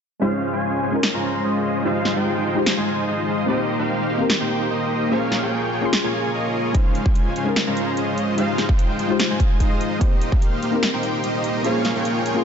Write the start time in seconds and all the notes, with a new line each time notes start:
0.20 C#3 G#3 C#4 D#4 F4 C5 F5
0.24 C5
0.53 G#3 C#4 F4 C5 G#5
0.83 G#3 C#4 F4 C5 G#5
0.91 G#3 C#4 D#4 F4
0.95 A#4
1.03 finger snap, snare
1.14 G#3 C#4 F4 C5 A#5
1.44 G#3 C#4 F4 C5 D#5
1.83 D#3 G#3 D#4 F4 G4 C5 F5
1.87 C5
2.05 snare
2.16 G#3 D#4 F4 C5 G5
2.46 G#3 D#4 F4 C5 G5
2.55 G#3 D#4 F4 G4 C5
2.66 finger snap, snare
2.77 G#3 D#4 F4 C5 G#5
3.07 G#3 D#4 F4 C5 D#5
3.46 A#3 C4 D#4 G4 C5 D#5
3.79 A#3 D#4 G4 C5 F5
4.09 A#3 D#4 G4 C5 F5
4.18 A#3 C4 D#4 G4
4.22 A#4
4.30 finger snap, snare
4.40 A#3 D#4 G4 C5 G5
4.70 A#3 D#4 G4 C5 D#5
5.09 C#3 G#3 A#3 C#4 F4 G#4 A#4 C#5 F5
5.13 C5
5.32 snare
5.42 A#3 F4 G#4 C#5 G5
5.73 A#3 F4 G#4 C#5 G5
5.81 A#3 C#4 F4 G#4
5.85 C6
5.93 finger snap, snare
6.04 A#3 F4 G#4 C#5 G#5
6.34 A#3 F4 G#4 C#5 D#5
6.73 G#3 C#4 D#4 F4 C5 F5, kick, closed hi-hat
6.77 C5
6.95 closed hi-hat
7.06 G#3 C#4 F4 C5 G#5, kick
7.15 closed hi-hat
7.36 G#3 C#4 F4 C5 G#5, closed hi-hat
7.44 G#3 C#4 D#4 F4
7.48 A#4
7.56 finger snap, snare, closed hi-hat
7.67 G#3 C#4 F4 C5 A#5
7.77 closed hi-hat
7.97 G#3 C#4 F4 C5 D#5, closed hi-hat
8.17 closed hi-hat
8.36 D#3 G#3 D#4 F4 G4 C5 F5, closed hi-hat
8.58 snare, closed hi-hat
8.69 G#3 D#4 F4 C5 G5, kick
8.79 closed hi-hat
8.99 G#3 D#4 F4 C5 G5, closed hi-hat
9.08 G#3 D#4 F4 G4
9.12 C5
9.20 finger snap, snare, closed hi-hat
9.30 G#3 D#4 F4 C5 G#5
9.40 kick, closed hi-hat
9.60 G#3 D#4 F4 C5 D#5, kick, closed hi-hat
9.81 closed hi-hat
9.99 C3 G3 A#3 C4 D#4 G4 A#4 C5 D#5, kick, closed hi-hat
10.03 C5
10.22 closed hi-hat
10.32 A#3 D#4 G4 C5 F5, kick
10.42 closed hi-hat
10.62 A#3 D#4 G4 C5 F5, closed hi-hat
10.71 A#3 C4 D#4 G4 A#4
10.83 finger snap, snare, closed hi-hat
10.93 A#3 D#4 G4 C5 G5
11.03 closed hi-hat
11.24 A#3 D#4 G4 C5 D#5, closed hi-hat
11.44 closed hi-hat
11.63 C#3 G#3 A#3 C#4 F4 G#4 C#5 F5, closed hi-hat
11.67 C5
11.85 snare, closed hi-hat
11.95 A#3 F4 G#4 C#5 G5
12.05 closed hi-hat
12.26 A#3 F4 G#4 C#5 G5, closed hi-hat
12.34 A#3 C#4 F4 G#4 C6